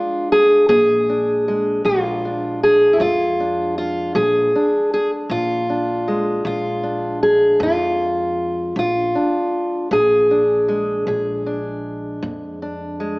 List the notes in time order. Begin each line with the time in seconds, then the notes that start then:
Already playing: F3 G#3 D4 F4
0.32 G#4
0.69 A#1 A#2 G#4
1.09 D4
1.48 G#3
1.85 A#1 F3 F4
2.25 D4
2.63 G#4
2.93 E4
3.00 F2 A#2 F4
3.40 D4
3.78 F4
4.15 A#1 F3 G#4
4.55 D4
4.94 G#4
5.29 A#1 A#2 F4
5.70 D4
6.08 G#3
6.45 A#1 F3 F4
6.83 D4
7.23 G#4
7.60 F2 A#2 F4
8.76 A#1 F3 F4
9.15 D4
9.91 A#1 A#2 G#4
10.31 D4
10.68 G#3
11.07 A#1 F3 G#4
11.46 D4
12.22 F2 A#2
12.62 D4
13.00 G#3